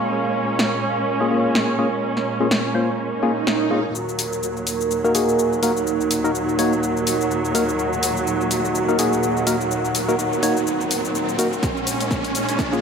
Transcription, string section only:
0, 0, Header, 1, 2, 480
1, 0, Start_track
1, 0, Key_signature, -6, "minor"
1, 0, Tempo, 480000
1, 109, Time_signature, 4, 2, 24, 8
1, 12812, End_track
2, 0, Start_track
2, 0, Title_t, "String section"
2, 0, Program_c, 0, 48
2, 0, Note_on_c, 0, 46, 66
2, 0, Note_on_c, 0, 56, 68
2, 0, Note_on_c, 0, 61, 81
2, 3909, Note_off_c, 0, 46, 0
2, 3910, Note_off_c, 0, 56, 0
2, 3910, Note_off_c, 0, 61, 0
2, 3947, Note_on_c, 0, 39, 71
2, 3947, Note_on_c, 0, 54, 85
2, 3948, Note_on_c, 0, 46, 70
2, 11588, Note_off_c, 0, 39, 0
2, 11588, Note_off_c, 0, 46, 0
2, 11588, Note_off_c, 0, 54, 0
2, 11627, Note_on_c, 0, 46, 78
2, 11627, Note_on_c, 0, 56, 70
2, 11627, Note_on_c, 0, 61, 88
2, 12812, Note_off_c, 0, 46, 0
2, 12812, Note_off_c, 0, 56, 0
2, 12812, Note_off_c, 0, 61, 0
2, 12812, End_track
0, 0, End_of_file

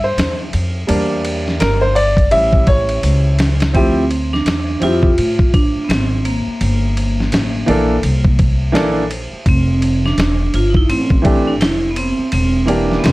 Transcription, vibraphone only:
0, 0, Header, 1, 2, 480
1, 0, Start_track
1, 0, Key_signature, -1, "minor"
1, 0, Tempo, 714286
1, 598, Time_signature, 4, 2, 24, 8
1, 8818, End_track
2, 0, Start_track
2, 0, Title_t, "Vibraphone"
2, 0, Program_c, 0, 11
2, 2522, Note_on_c, 0, 60, 85
2, 2912, Note_on_c, 0, 62, 94
2, 2917, Note_off_c, 0, 60, 0
2, 3247, Note_on_c, 0, 65, 110
2, 3252, Note_off_c, 0, 62, 0
2, 3696, Note_off_c, 0, 65, 0
2, 3721, Note_on_c, 0, 62, 98
2, 3928, Note_on_c, 0, 59, 62
2, 3929, Note_off_c, 0, 62, 0
2, 3960, Note_on_c, 0, 60, 87
2, 3962, Note_off_c, 0, 59, 0
2, 4202, Note_on_c, 0, 58, 77
2, 4206, Note_off_c, 0, 60, 0
2, 5613, Note_off_c, 0, 58, 0
2, 6375, Note_on_c, 0, 60, 94
2, 6726, Note_off_c, 0, 60, 0
2, 6756, Note_on_c, 0, 62, 93
2, 7090, Note_on_c, 0, 65, 104
2, 7094, Note_off_c, 0, 62, 0
2, 7186, Note_off_c, 0, 65, 0
2, 7191, Note_on_c, 0, 63, 70
2, 7226, Note_off_c, 0, 63, 0
2, 7235, Note_on_c, 0, 64, 98
2, 7321, Note_on_c, 0, 60, 94
2, 7326, Note_off_c, 0, 64, 0
2, 7711, Note_on_c, 0, 62, 86
2, 7717, Note_off_c, 0, 60, 0
2, 7795, Note_off_c, 0, 62, 0
2, 7800, Note_on_c, 0, 64, 95
2, 7988, Note_off_c, 0, 64, 0
2, 8003, Note_on_c, 0, 59, 60
2, 8039, Note_off_c, 0, 59, 0
2, 8044, Note_on_c, 0, 60, 84
2, 8264, Note_off_c, 0, 60, 0
2, 8286, Note_on_c, 0, 60, 84
2, 8517, Note_on_c, 0, 62, 86
2, 8529, Note_off_c, 0, 60, 0
2, 8706, Note_off_c, 0, 62, 0
2, 8729, Note_on_c, 0, 59, 62
2, 8761, Note_on_c, 0, 60, 81
2, 8762, Note_off_c, 0, 59, 0
2, 8818, Note_off_c, 0, 60, 0
2, 8818, End_track
0, 0, End_of_file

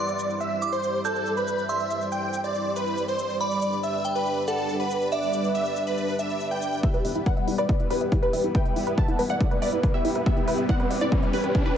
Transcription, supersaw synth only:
0, 0, Header, 1, 2, 480
1, 0, Start_track
1, 0, Key_signature, 1, "minor"
1, 0, Tempo, 428571
1, 1894, Time_signature, 4, 2, 24, 8
1, 13187, End_track
2, 0, Start_track
2, 0, Title_t, "Supersaw synth"
2, 0, Program_c, 0, 81
2, 0, Note_on_c, 0, 74, 97
2, 387, Note_off_c, 0, 74, 0
2, 453, Note_on_c, 0, 76, 100
2, 763, Note_off_c, 0, 76, 0
2, 812, Note_on_c, 0, 72, 81
2, 1123, Note_off_c, 0, 72, 0
2, 1172, Note_on_c, 0, 69, 90
2, 1483, Note_off_c, 0, 69, 0
2, 1533, Note_on_c, 0, 71, 88
2, 1843, Note_off_c, 0, 71, 0
2, 1893, Note_on_c, 0, 76, 91
2, 2306, Note_off_c, 0, 76, 0
2, 2374, Note_on_c, 0, 79, 94
2, 2683, Note_off_c, 0, 79, 0
2, 2733, Note_on_c, 0, 74, 85
2, 3043, Note_off_c, 0, 74, 0
2, 3092, Note_on_c, 0, 71, 89
2, 3403, Note_off_c, 0, 71, 0
2, 3454, Note_on_c, 0, 72, 92
2, 3763, Note_off_c, 0, 72, 0
2, 3813, Note_on_c, 0, 74, 94
2, 4226, Note_off_c, 0, 74, 0
2, 4294, Note_on_c, 0, 76, 96
2, 4603, Note_off_c, 0, 76, 0
2, 4652, Note_on_c, 0, 71, 80
2, 4963, Note_off_c, 0, 71, 0
2, 5014, Note_on_c, 0, 69, 94
2, 5323, Note_off_c, 0, 69, 0
2, 5373, Note_on_c, 0, 71, 88
2, 5683, Note_off_c, 0, 71, 0
2, 5734, Note_on_c, 0, 74, 94
2, 6147, Note_off_c, 0, 74, 0
2, 6213, Note_on_c, 0, 76, 95
2, 6523, Note_off_c, 0, 76, 0
2, 6573, Note_on_c, 0, 71, 84
2, 6883, Note_off_c, 0, 71, 0
2, 6933, Note_on_c, 0, 76, 92
2, 7243, Note_off_c, 0, 76, 0
2, 7293, Note_on_c, 0, 79, 89
2, 7603, Note_off_c, 0, 79, 0
2, 7653, Note_on_c, 0, 67, 72
2, 7653, Note_on_c, 0, 76, 99
2, 8066, Note_off_c, 0, 67, 0
2, 8066, Note_off_c, 0, 76, 0
2, 8133, Note_on_c, 0, 74, 80
2, 8133, Note_on_c, 0, 78, 98
2, 8443, Note_off_c, 0, 74, 0
2, 8443, Note_off_c, 0, 78, 0
2, 8493, Note_on_c, 0, 71, 73
2, 8493, Note_on_c, 0, 74, 79
2, 8803, Note_off_c, 0, 71, 0
2, 8803, Note_off_c, 0, 74, 0
2, 8853, Note_on_c, 0, 67, 76
2, 8853, Note_on_c, 0, 71, 91
2, 9163, Note_off_c, 0, 67, 0
2, 9163, Note_off_c, 0, 71, 0
2, 9212, Note_on_c, 0, 67, 74
2, 9213, Note_on_c, 0, 71, 89
2, 9523, Note_off_c, 0, 67, 0
2, 9523, Note_off_c, 0, 71, 0
2, 9572, Note_on_c, 0, 79, 98
2, 9573, Note_on_c, 0, 76, 76
2, 9986, Note_off_c, 0, 76, 0
2, 9986, Note_off_c, 0, 79, 0
2, 10053, Note_on_c, 0, 78, 78
2, 10053, Note_on_c, 0, 81, 97
2, 10363, Note_off_c, 0, 78, 0
2, 10363, Note_off_c, 0, 81, 0
2, 10413, Note_on_c, 0, 78, 87
2, 10414, Note_on_c, 0, 74, 71
2, 10723, Note_off_c, 0, 74, 0
2, 10723, Note_off_c, 0, 78, 0
2, 10775, Note_on_c, 0, 71, 76
2, 10775, Note_on_c, 0, 74, 96
2, 11084, Note_off_c, 0, 71, 0
2, 11084, Note_off_c, 0, 74, 0
2, 11134, Note_on_c, 0, 67, 70
2, 11135, Note_on_c, 0, 76, 89
2, 11444, Note_off_c, 0, 67, 0
2, 11444, Note_off_c, 0, 76, 0
2, 11494, Note_on_c, 0, 67, 77
2, 11494, Note_on_c, 0, 76, 94
2, 11907, Note_off_c, 0, 67, 0
2, 11907, Note_off_c, 0, 76, 0
2, 11975, Note_on_c, 0, 74, 77
2, 11975, Note_on_c, 0, 78, 100
2, 12284, Note_off_c, 0, 74, 0
2, 12284, Note_off_c, 0, 78, 0
2, 12335, Note_on_c, 0, 71, 74
2, 12335, Note_on_c, 0, 74, 89
2, 12644, Note_off_c, 0, 71, 0
2, 12644, Note_off_c, 0, 74, 0
2, 12695, Note_on_c, 0, 71, 93
2, 12696, Note_on_c, 0, 67, 77
2, 13004, Note_off_c, 0, 67, 0
2, 13004, Note_off_c, 0, 71, 0
2, 13055, Note_on_c, 0, 71, 88
2, 13056, Note_on_c, 0, 67, 74
2, 13187, Note_off_c, 0, 67, 0
2, 13187, Note_off_c, 0, 71, 0
2, 13187, End_track
0, 0, End_of_file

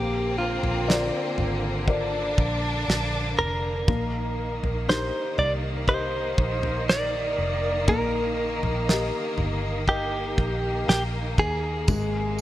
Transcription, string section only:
0, 0, Header, 1, 2, 480
1, 0, Start_track
1, 0, Key_signature, -3, "major"
1, 0, Tempo, 1000000
1, 1863, Time_signature, 4, 2, 24, 8
1, 5957, End_track
2, 0, Start_track
2, 0, Title_t, "String section"
2, 0, Program_c, 0, 48
2, 0, Note_on_c, 0, 50, 75
2, 0, Note_on_c, 0, 58, 82
2, 0, Note_on_c, 0, 60, 83
2, 894, Note_off_c, 0, 60, 0
2, 900, Note_on_c, 0, 62, 89
2, 1844, Note_off_c, 0, 50, 0
2, 1844, Note_off_c, 0, 58, 0
2, 1852, Note_off_c, 0, 62, 0
2, 1864, Note_on_c, 0, 51, 79
2, 1864, Note_on_c, 0, 58, 82
2, 5684, Note_off_c, 0, 51, 0
2, 5699, Note_on_c, 0, 48, 76
2, 5700, Note_on_c, 0, 56, 67
2, 5957, Note_off_c, 0, 48, 0
2, 5957, Note_off_c, 0, 56, 0
2, 5957, Note_off_c, 0, 58, 0
2, 5957, End_track
0, 0, End_of_file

